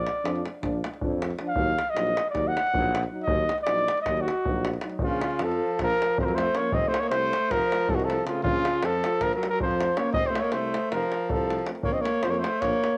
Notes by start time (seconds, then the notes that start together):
Already playing: D5
0.07 davul high
0.24 F2 F3 D4, davul high
0.36 davul high
0.46 davul high
0.62 A#1 F3 D4, davul high, davul low
0.84 davul high
0.94 davul high
1.01 F2 F3 D4, davul low
1.22 davul high
1.31 davul high
1.39 F3 D4, davul high
1.49 F5
1.56 D#2 F#3 D#4, davul low
1.79 davul high
1.90 D#5
1.95 A#1 F#3 D#4, davul high
2.07 davul high
2.17 davul high
2.30 D#2 D5
2.35 F#3 D#4, davul high, davul low
2.48 F#5
2.57 davul high
2.67 davul high
2.74 A#1 F#3 D#4, davul low
2.95 davul high
3.03 davul high
3.11 F#3 D#4
3.23 D#5
3.27 D#2 F#3 D#4, davul low
3.49 davul high
3.58 davul high
3.63 F#3 D5, davul high
3.67 A#1 D#4
3.78 davul high
3.88 davul high
3.97 davul high
4.02 D#4 D#5
4.06 D#2 F#3, davul high, davul low
4.17 davul high
4.21 F#4
4.28 davul high
4.45 A#1 F#3 D#4, davul low
4.65 davul high
4.73 davul high
4.81 F#3 D#4, davul high
4.89 davul high
4.99 A#1 C#3, davul low
5.03 F4
5.21 davul high
5.31 davul high
5.39 F2 F3, davul high
5.43 A4
5.52 davul high
5.79 A#1 F3, davul high, davul low
5.83 A#4
5.90 davul high
6.02 davul high
6.18 F2 F3 C5, davul low
6.25 F#3 A#4, davul high
6.34 A3 C5, davul high
6.53 F3 A#3 C#4 C#5, davul high
6.71 F1 C4 D#5, davul low
6.87 A3 C5
6.94 davul high
7.00 A#3 C#5, davul high
7.10 C2 A3 C5, davul high
7.22 davul high
7.33 davul high
7.49 F1 F3 A#4, davul high, davul low
7.62 davul high
7.72 davul high
7.88 C2 F3 A4, davul low
7.95 D#3 F#4
8.00 davul high
8.04 F3 A4
8.10 davul high
8.25 C#3 A3 C4 F4, davul high
8.42 A#1 C#3 F4, davul low
8.65 davul high
8.74 davul high
8.82 F2 F3 A4, davul high
8.93 davul high
9.04 davul high
9.21 A#1 F3 A#4, davul high, davul low
9.33 F#3 A#4, davul high
9.43 davul high
9.50 F#3 A#4
9.60 F2 F3 C5, davul low
9.71 davul high
9.80 davul high
9.96 A#3 C#4 C#5, davul high
10.13 F1 C4 D#5, davul low
10.25 C5, davul high
10.30 A3
10.35 davul high
10.40 A#3 C#5
10.44 davul high
10.52 C2 A3 C5, davul high
10.74 davul high
10.91 F1 F3 A#4, davul high
11.03 davul high
11.12 davul high
11.30 C2 F3 A4, davul low
11.50 davul high
11.59 davul high
11.66 A3 C4, davul high
11.75 davul high
11.83 A#1 A#3 C#5, davul low
11.93 C4 D#5
12.01 A#3 C#5
12.06 davul high
12.14 davul high
12.23 F2 F3 C5, davul high
12.30 A#3 C#5
12.34 davul high
12.39 A3 C5
12.44 davul high
12.61 A#1 A#3 C#5, davul high, davul low
12.73 davul high
12.84 davul high